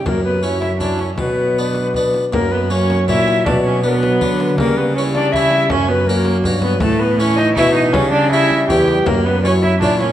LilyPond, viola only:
\new Staff \with { instrumentName = "Viola" } { \time 3/4 \key fis \phrygian \tempo 4 = 160 ais8 b8 cis'8 e'8 d'8 cis'8 | b2 r4 | ais8 b8 cis'4 e'4 | d'8 cis'8 b2 |
ais8 b8 cis'8 d'8 e'4 | cis'8 b8 ais4. b8 | a8 b8 cis'8 dis'8 e'8 dis'8 | cis'8 d'8 e'4 g'4 |
ais8 b8 cis'8 e'8 d'8 cis'8 | }